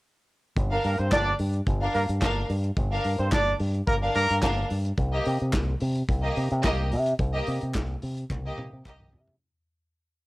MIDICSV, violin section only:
0, 0, Header, 1, 2, 480
1, 0, Start_track
1, 0, Tempo, 552995
1, 490, Time_signature, 4, 2, 24, 8
1, 8912, End_track
2, 0, Start_track
2, 0, Title_t, "Violin section"
2, 0, Program_c, 0, 48
2, 614, Note_on_c, 0, 62, 78
2, 615, Note_on_c, 0, 70, 80
2, 616, Note_on_c, 0, 77, 92
2, 711, Note_off_c, 0, 62, 0
2, 711, Note_off_c, 0, 70, 0
2, 712, Note_off_c, 0, 77, 0
2, 1568, Note_on_c, 0, 77, 93
2, 1569, Note_on_c, 0, 70, 78
2, 1572, Note_on_c, 0, 62, 82
2, 1665, Note_off_c, 0, 77, 0
2, 1666, Note_off_c, 0, 70, 0
2, 1668, Note_off_c, 0, 62, 0
2, 1927, Note_on_c, 0, 62, 88
2, 1927, Note_on_c, 0, 77, 97
2, 1928, Note_on_c, 0, 70, 84
2, 2129, Note_off_c, 0, 62, 0
2, 2129, Note_off_c, 0, 77, 0
2, 2130, Note_off_c, 0, 70, 0
2, 2530, Note_on_c, 0, 62, 76
2, 2530, Note_on_c, 0, 77, 89
2, 2532, Note_on_c, 0, 70, 91
2, 2626, Note_off_c, 0, 62, 0
2, 2626, Note_off_c, 0, 77, 0
2, 2627, Note_off_c, 0, 70, 0
2, 3485, Note_on_c, 0, 62, 85
2, 3487, Note_on_c, 0, 77, 92
2, 3488, Note_on_c, 0, 70, 82
2, 3582, Note_off_c, 0, 62, 0
2, 3583, Note_off_c, 0, 77, 0
2, 3584, Note_off_c, 0, 70, 0
2, 3837, Note_on_c, 0, 70, 85
2, 3840, Note_on_c, 0, 62, 89
2, 3842, Note_on_c, 0, 77, 93
2, 4043, Note_off_c, 0, 70, 0
2, 4044, Note_off_c, 0, 62, 0
2, 4045, Note_off_c, 0, 77, 0
2, 4443, Note_on_c, 0, 67, 90
2, 4444, Note_on_c, 0, 75, 87
2, 4445, Note_on_c, 0, 58, 76
2, 4542, Note_off_c, 0, 67, 0
2, 4542, Note_off_c, 0, 75, 0
2, 4543, Note_off_c, 0, 58, 0
2, 5403, Note_on_c, 0, 75, 90
2, 5404, Note_on_c, 0, 58, 77
2, 5404, Note_on_c, 0, 67, 81
2, 5502, Note_off_c, 0, 75, 0
2, 5503, Note_off_c, 0, 58, 0
2, 5503, Note_off_c, 0, 67, 0
2, 5760, Note_on_c, 0, 58, 84
2, 5762, Note_on_c, 0, 67, 93
2, 5763, Note_on_c, 0, 75, 102
2, 5966, Note_off_c, 0, 58, 0
2, 5967, Note_off_c, 0, 67, 0
2, 5968, Note_off_c, 0, 75, 0
2, 6363, Note_on_c, 0, 67, 89
2, 6365, Note_on_c, 0, 75, 97
2, 6368, Note_on_c, 0, 58, 82
2, 6463, Note_off_c, 0, 67, 0
2, 6464, Note_off_c, 0, 75, 0
2, 6466, Note_off_c, 0, 58, 0
2, 7338, Note_on_c, 0, 58, 75
2, 7339, Note_on_c, 0, 75, 99
2, 7341, Note_on_c, 0, 67, 86
2, 7432, Note_off_c, 0, 58, 0
2, 7433, Note_off_c, 0, 75, 0
2, 7434, Note_off_c, 0, 67, 0
2, 7686, Note_on_c, 0, 67, 80
2, 7687, Note_on_c, 0, 58, 80
2, 7688, Note_on_c, 0, 75, 92
2, 7891, Note_off_c, 0, 67, 0
2, 7892, Note_off_c, 0, 58, 0
2, 7893, Note_off_c, 0, 75, 0
2, 8912, End_track
0, 0, End_of_file